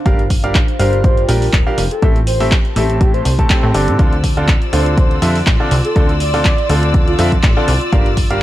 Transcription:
Already playing: analog synth pad D4 C5 F5
0.06 analog synth bass G1, grand piano G3 D4 G4 A#4 F5, analog synth pad F4, kick, closed hi-hat
0.19 closed hi-hat
0.30 kick, open hi-hat
0.44 grand piano G3 D4 G4 A#4 F5, closed hi-hat
0.55 kick, clap, closed hi-hat
0.68 analog synth pad G5, closed hi-hat
0.79 analog synth bass G1, grand piano G3 D4 G4 A#4 F5, soft synth lead C5, open hi-hat
0.93 analog synth pad A#4, closed hi-hat
1.04 soft synth lead C5, kick, closed hi-hat
1.17 closed hi-hat
1.29 analog synth bass A#1, grand piano G3 D4 G4 A#4 G5, open hi-hat
1.42 open hi-hat
1.53 analog synth bass D1, kick, clap
1.67 grand piano G3 D4 G4 A#4 F5
1.78 analog synth bass F1, open hi-hat
1.91 soft synth lead A4, closed hi-hat
2.02 analog synth bass A1, grand piano A2 C4 G4 A4 E5, analog synth pad G4, kick, closed hi-hat
2.16 closed hi-hat
2.26 soft synth lead C5, analog synth pad A5, open hi-hat
2.40 grand piano A2 C4 G4 A4 E5, open hi-hat
2.50 analog synth pad C5, kick, clap, closed hi-hat
2.65 closed hi-hat
2.76 analog synth bass A1, grand piano A2 C4 G4 A4 E5, soft synth lead G4, open hi-hat
2.90 closed hi-hat
3.01 soft synth lead G4, kick, closed hi-hat
3.14 soft synth lead C5, closed hi-hat
3.25 analog synth bass C2, soft synth lead C5, open hi-hat
3.39 grand piano A2 C4 G4 A4 A5, kick, closed hi-hat
3.50 grand piano A2 C4 G4 A4 G5, kick, clap, closed hi-hat
3.63 analog synth bass A2
3.75 analog synth bass G1, grand piano D3 C4 G4 A4 D5, open hi-hat
3.88 analog synth bass A2, closed hi-hat
3.99 analog synth bass D2, grand piano D3 C4 F4 A4 D5, analog synth pad F4, violin section D5 E6, kick, closed hi-hat
4.13 closed hi-hat
4.23 analog synth pad C6, kick, open hi-hat
4.37 grand piano D3 C4 F4 A4 D5, closed hi-hat
4.48 kick, clap, closed hi-hat
4.62 closed hi-hat
4.73 analog synth bass D2, grand piano D3 C4 F4 A4 D5, soft synth lead C5, open hi-hat
4.82 analog synth pad D5
4.86 closed hi-hat
4.97 soft synth lead C5, kick, closed hi-hat
5.11 closed hi-hat
5.22 analog synth bass F2, grand piano D3 C4 F4 A4 E5, open hi-hat
5.35 open hi-hat
5.47 analog synth bass A1, kick, clap, closed hi-hat
5.60 grand piano D3 C4 F4 A4 D5
5.71 analog synth bass C2, open hi-hat
5.84 soft synth lead A4, closed hi-hat
5.96 analog synth bass D2, grand piano D3 C4 F4 A4 D5, kick, closed hi-hat
6.09 closed hi-hat
6.20 soft synth lead D5, open hi-hat
6.34 grand piano D3 C4 F4 A4 D5, open hi-hat
6.45 kick, clap, closed hi-hat
6.58 closed hi-hat
6.69 analog synth bass D2, grand piano D3 C4 F4 A4 D5, soft synth lead A4, open hi-hat
6.83 closed hi-hat
6.94 kick, closed hi-hat
7.08 soft synth lead F4, closed hi-hat
7.19 analog synth bass F2, grand piano D3 C4 F4 A4 E5, soft synth lead F4, open hi-hat
7.32 kick, closed hi-hat
7.43 analog synth bass A1, kick, clap, closed hi-hat
7.57 grand piano D3 C4 F4 A4 D5
7.68 analog synth bass C2, open hi-hat
7.81 closed hi-hat
7.92 analog synth bass G1, grand piano G3 D4 G4 A#4 F5, kick, closed hi-hat
8.06 closed hi-hat
8.17 kick, open hi-hat
8.26 analog synth pad A#4
8.31 grand piano G3 D4 G4 A#4 F5, closed hi-hat

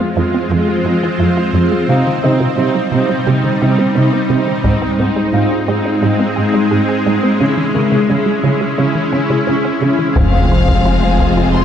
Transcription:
Already playing: viola section G#3 F4, ambient pad G#3 C4 F4 C5, felt piano E5
0.16 cello section F2, synth arpeggio sound F3, viola section G#3 F4
0.34 synth arpeggio sound C4
0.50 cello section F2, synth arpeggio sound F3, viola section G#3 F4
0.69 synth arpeggio sound G#3
0.85 cello section F2, viola section G#3 F4, synth arpeggio sound F4
1.03 synth arpeggio sound F3
1.19 cello section F2, viola section G#3 F4, synth arpeggio sound F4
1.37 synth arpeggio sound F4
1.54 cello section F2, synth arpeggio sound F3, viola section G#3 F4
1.72 synth arpeggio sound G#3
1.88 cello section C3, synth arpeggio sound C3, ambient pad G3 D#4, viola section C4 D#4, felt piano F4 F5
2.07 synth arpeggio sound D#3
2.23 cello section C3, synth arpeggio sound D#3, viola section C4 D#4, felt piano D#4 D#5
2.40 synth arpeggio sound C3
2.57 cello section C3, synth arpeggio sound G3, viola section C4 D#4
2.75 synth arpeggio sound G3
2.91 synth arpeggio sound C3, cello section C3, viola section C4 D#4
3.09 synth arpeggio sound G3
3.26 synth arpeggio sound C3, cello section C3, viola section C4 D#4
3.44 synth arpeggio sound D#3
3.61 cello section C3, viola section C4 D#4, synth arpeggio sound C4
3.78 synth arpeggio sound C3
3.95 cello section C3, synth arpeggio sound C4, viola section C4 D#4
4.13 synth arpeggio sound C4
4.30 synth arpeggio sound C3, cello section C3, viola section C4 D#4
4.47 synth arpeggio sound D#3
4.64 cello section G#2, synth arpeggio sound G#3, ambient pad G#3 C4 G#4, viola section C4 D#4, taiko
4.82 synth arpeggio sound C4
4.98 cello section G#2, viola section C4 D#4, synth arpeggio sound C4
5.16 synth arpeggio sound G#3
5.33 cello section G#2, viola section C4 D#4, synth arpeggio sound D#4, felt piano F4 F5
5.51 synth arpeggio sound D#4
5.67 cello section G#2, synth arpeggio sound G#3, viola section C4 D#4
5.85 synth arpeggio sound D#4
6.02 cello section G#2, synth arpeggio sound G#3, viola section C4 D#4
6.19 synth arpeggio sound C4
6.36 cello section G#2, viola section C4 D#4, synth arpeggio sound G#4
6.54 synth arpeggio sound G#3
6.71 cello section G#2, viola section C4 D#4, synth arpeggio sound G#4
6.89 synth arpeggio sound G#4
7.05 cello section G#2, synth arpeggio sound G#3, viola section C4 D#4
7.23 synth arpeggio sound C4
7.39 synth arpeggio sound C#3, cello section C#3, ambient pad C#4 E4, viola section C#4 E4
7.57 synth arpeggio sound E3
7.74 cello section C#3, synth arpeggio sound E3, viola section C#4 E4, felt piano A#4
7.92 synth arpeggio sound C#3
8.09 cello section C#3, synth arpeggio sound G#3, viola section C#4 E4
8.26 synth arpeggio sound G#3
8.43 synth arpeggio sound C#3, cello section C#3, viola section C#4 E4
8.61 synth arpeggio sound G#3
8.78 synth arpeggio sound C#3, cello section C#3, viola section C#4 E4
8.95 synth arpeggio sound E3
9.13 cello section C#3, synth arpeggio sound C#4, viola section C#4 E4
9.30 synth arpeggio sound C#3
9.47 cello section C#3, synth arpeggio sound C#4, viola section C#4 E4
9.65 synth arpeggio sound C#4
9.82 cello section C#3, synth arpeggio sound C#3, viola section C#4 E4
9.99 synth arpeggio sound E3
10.15 double bass section F1, sub bass F1, cello section F2, trombone section C3 G#3, synth arpeggio sound F3, ambient pad G#3 C4 F4 C5, french horn section C4 F4, viola section C4 F4, violin section G#4 C5 F5, taiko, sub drop
10.34 synth arpeggio sound C4
10.51 synth arpeggio sound F4
10.68 synth arpeggio sound F3, taiko
10.85 synth arpeggio sound F4, felt piano C5
11.03 synth arpeggio sound G#3
11.19 synth arpeggio sound F3, taiko
11.37 synth arpeggio sound F4
11.53 synth arpeggio sound F3, violin section C6

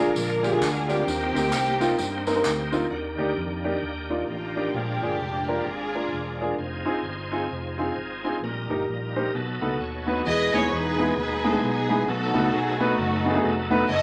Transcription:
Already playing: tonewheel organ D3 G#3 A#3 F4, upright piano A#3 D4 F4 G#4, string section D4 F4 G#4 A#4
0.16 fingered electric bass A#1, string section D4 F4 A#4, tambourine
0.43 upright piano A#3 D4 F4 G4, string section D4 F4 G#4, tambourine
0.52 upright piano A#3 D4 F4 G#4
0.61 fingered electric bass D2, clap, tambourine
0.88 upright piano A#3 D4 F4 G4, string section A#3 C4 G4, tambourine
1.07 fingered electric bass D#2, upright piano D#3, tonewheel organ A#3 C4 D#4 G4, tambourine
1.34 fingered electric bass D2, upright piano A#3 C4 D#4 G4, tambourine
1.52 fingered electric bass C2, clap, tambourine
1.80 upright piano A#3 C4 D#4 F4, tambourine
1.99 fingered electric bass G2, tambourine
2.26 upright piano A#3 C4 D#4 A#4, tambourine
2.35 upright piano A#3 C4 D#4 A#4
2.45 fingered electric bass D2, clap, tambourine
2.72 upright piano A#3 C4 D#4 F4, tambourine
2.90 fingered electric bass D#2, tonewheel organ D#3 A#3 D4 F#4, upright piano D#3
2.96 tonewheel organ G4
3.18 fingered electric bass D2, upright piano A#3 D4 D#4 G4
3.37 fingered electric bass F2
3.64 upright piano A#3 D4 D#4 G4
3.82 fingered electric bass D#2
4.10 upright piano A#3 D4 D#4 F4
4.28 fingered electric bass A1, string section A#3 D4 F4
4.56 upright piano A#3 D4 D#4 G4
4.74 fingered electric bass A#1, upright piano A#2, tonewheel organ F3 G#3 A#3 D4, string section D4 G4
5.02 fingered electric bass G1, upright piano A#3 D4 F4 G#4
5.20 fingered electric bass F1
5.48 upright piano A#3 D4 F4 A#4
5.66 fingered electric bass G#1, string section D4 F4 G#4
5.94 upright piano A#3 D4 F4 A#4
6.12 fingered electric bass E1
6.40 upright piano A#3 D4 F4 G#4
6.58 fingered electric bass F1, tonewheel organ F3 C4 D#4 G#4
6.85 fingered electric bass G#1, upright piano C4 D#4 F4 G#4
7.05 fingered electric bass G1
7.32 upright piano C4 D#4 F4 G#4
7.51 fingered electric bass F1
7.78 upright piano C4 D#4 F4 G#4
7.96 fingered electric bass G#1
8.24 upright piano C4 D#4 F4 G#4
8.42 fingered electric bass A#1, upright piano A#2, tonewheel organ F#3 A#3 D#4 A#4
8.49 tonewheel organ G3
8.70 fingered electric bass G1, upright piano A#3 D#4 G4 A#4
8.89 fingered electric bass A#1
9.16 upright piano A#3 D#4 G4 C5
9.35 fingered electric bass B1, upright piano B2, tonewheel organ F#3 B3 D#4 A4
9.61 fingered electric bass C#2, upright piano B3 D#4 F#4 A4
9.80 fingered electric bass D#2, tonewheel organ C#5
10.07 upright piano B3 D#4 F#4 B4
10.26 fingered electric bass E2, tonewheel organ B2 G#3 B3 D#4 G#4, upright piano E3, string section G#4 B4 D#5
10.53 fingered electric bass D#2, upright piano G#3 B3 D#4 E4 G#4, string section C#5
10.72 fingered electric bass E2, string section D#4 G#4 B4
10.99 upright piano G#3 B3 D#4 E4 G#4
11.17 fingered electric bass D#2, string section D#4 G#4 B4
11.44 upright piano G#3 B3 D#4 E4 G#4, string section A4
11.53 upright piano G#3 B3 D#4 E4 G#4
11.63 fingered electric bass B1, string section B3 D#4 G#4
11.89 upright piano G#3 B3 D#4 E4 G#4
12.08 fingered electric bass B1, upright piano B2, tonewheel organ F#3 A3 B3 D#4 A4, string section D#4 F#4 A4
12.34 fingered electric bass C#2, upright piano A3 B3 D#4 F#4 A4
12.53 fingered electric bass B1, string section G#4
12.80 upright piano A3 B3 D#4 F#4 B4, string section A3 D#4 F#4
12.98 fingered electric bass F#1
13.25 upright piano A3 B3 D#4 F#4 G#4
13.34 upright piano A3 B3 D#4 F#4 G#4
13.44 fingered electric bass F1
13.70 upright piano A3 B3 D#4 F#4 B4
13.89 fingered electric bass F#1, tonewheel organ F#3 A3 C#4 E4 G#4, string section A4 D#5
13.95 tonewheel organ A4

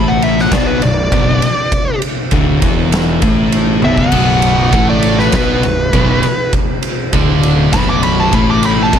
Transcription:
Already playing: fingered electric bass A1, distorted electric guitar A2 A3
0.08 lead electric guitar F#5
0.22 lead electric guitar E5, ride
0.39 lead electric guitar F#5, snare
0.52 fingered electric bass B1, distorted electric guitar B2 B3, lead electric guitar D5, kick, snare, ride
0.67 lead electric guitar B4
0.82 fingered electric bass B0, distorted electric guitar B1, lead electric guitar D5, ride
1.12 fingered electric bass B0, distorted electric guitar B1 B2, kick, ride
1.42 ride
1.72 kick, ride
2.02 ride
2.31 fingered electric bass D1, distorted electric guitar D2 D3, kick, ride
2.62 fingered electric bass E1, distorted electric guitar E2 E3, kick, ride
2.92 snare, ride
3.22 fingered electric bass A1, distorted electric guitar A2 A3, kick, ride
3.52 ride
3.82 fingered electric bass B0, distorted electric guitar B1 B2, lead electric guitar E5, high tom
3.98 lead electric guitar F#5, kick
4.12 fingered electric bass B0, distorted electric guitar B1 B2, kick, crash
4.42 ride
4.72 fingered electric bass A1, distorted electric guitar A2 A3, kick, ride
4.90 lead electric guitar D5
5.03 ride
5.19 lead electric guitar B4, snare
5.32 fingered electric bass B1, distorted electric guitar B2 B3, lead electric guitar B4, kick, snare, ride
5.63 fingered electric bass B0, distorted electric guitar B1, ride
5.93 fingered electric bass B0, distorted electric guitar B1 B2, kick, ride
6.23 ride
6.53 kick, ride
6.83 ride
7.13 fingered electric bass D1, distorted electric guitar D2 D3, kick, ride
7.43 ride
7.73 fingered electric bass B0, distorted electric guitar B1 B2, lead electric guitar B5, kick, snare, ride
7.90 lead electric guitar D6
8.03 lead electric guitar B5, ride
8.20 lead electric guitar A5
8.32 fingered electric bass A1, distorted electric guitar A2 A3, lead electric guitar B5, kick, ride
8.51 lead electric guitar D6
8.63 lead electric guitar B5, ride
8.83 lead electric guitar A5
8.93 fingered electric bass B0, distorted electric guitar B1 B2, kick, ride

